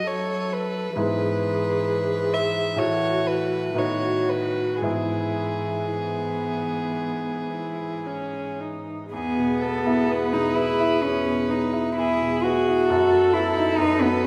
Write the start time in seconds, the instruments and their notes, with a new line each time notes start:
Already playing: grand piano F#2 B3 D#4 A4
0.07 cello F#3, viola A4, violin C#5
0.53 violin B4
0.96 grand piano G#2 B3 E4 G#4, cello E3, viola G#4, violin B4
2.34 violin E5
2.76 grand piano A2 A3 E4 F#4, violin C#5
2.80 cello E3, viola F#4
3.27 violin B4
3.74 grand piano A2 B3 D#4 F#4, cello D#3, viola F#4, violin C#5
4.29 violin B4
4.82 grand piano G#2 B3 E4 G#4, cello E3, viola E4, violin G#4
5.95 viola B3
7.54 viola E4
8.06 viola C#4
8.60 viola D#4
9.12 grand piano E2, cello B3, viola G#4, violin G#4
9.38 grand piano B2
9.62 grand piano B3, violin A4
9.86 grand piano E4
10.11 grand piano E2, violin B4
10.33 grand piano B2, cello D#4
10.56 grand piano B3, cello E4
10.80 grand piano E4
11.04 grand piano E2, cello C#4
11.26 grand piano B2
11.48 grand piano B3, cello D#4
11.73 grand piano E4
11.96 grand piano E2, cello E4, viola G#4, violin G#4
12.21 grand piano B2
12.44 grand piano B3, cello F#4
12.68 grand piano E4
12.90 grand piano F#2, violin A4, viola A4
13.12 grand piano F#3
13.34 grand piano B3, cello E4
13.56 grand piano D#4
13.78 grand piano F#2, cello D#4, viola A4, violin B4
14.02 grand piano F#3, cello B3
14.23 grand piano B3